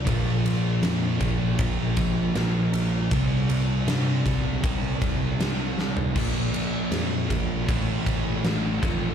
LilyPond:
<<
  \new Staff \with { instrumentName = "Distorted electric guitar" } { \clef bass \time 4/4 \key bes \lydian \tempo 4 = 79 <bes, f bes>2~ <bes, f bes>8 <bes, f bes>8 <bes, f bes>4 | <c g c'>2~ <c g c'>8 <c g c'>8 <c g c'>4 | <bes, f bes>2 <a, e a>4. <f, c f>8 | }
  \new Staff \with { instrumentName = "Distorted electric guitar" } { \clef bass \time 4/4 \key bes \lydian <bes, f bes>2 <bes, f bes>2 | <c g c'>2 <c g c'>2 | <bes, f bes>2 <a, e a>4. <f, c f>8 | }
  \new Staff \with { instrumentName = "Distorted electric guitar" } { \clef bass \time 4/4 \key bes \lydian <bes, f bes>4. <bes, f bes>2~ <bes, f bes>8 | <c g c'>4. <c g c'>2~ <c g c'>8 | <bes, f bes>4. <bes, f bes>8 <a, e a>4. <f, c f>8 | }
  \new Staff \with { instrumentName = "Picked electric bass" } { \clef bass \time 4/4 \key bes \lydian bes,,8 bes,,8 f,8 bes,,8 bes,,8 bes,,8 bes,,8 bes,,8 | c,8 c,8 g,8 c,8 c,8 c,8 c,8 c,8 | bes,,8 bes,,8 f,8 bes,,8 a,,8 a,,8 a,,8 a,,8 | }
  \new DrumStaff \with { instrumentName = "Drums" } \drummode { \time 4/4 <bd cymr>8 cymr8 <cymr sn>8 <bd cymr>8 <bd cymr>8 <bd cymr>8 <cymr sn>8 cymr8 | <bd cymr>8 cymr8 <cymr sn>8 <bd cymr sn>8 <bd cymr>8 <bd cymr>8 <cymr sn>8 sn16 tomfh16 | <cymc bd>8 cymr8 <cymr sn>8 <bd cymr sn>8 <bd cymr>8 <bd cymr>8 <cymr sn>8 <bd cymr>8 | }
>>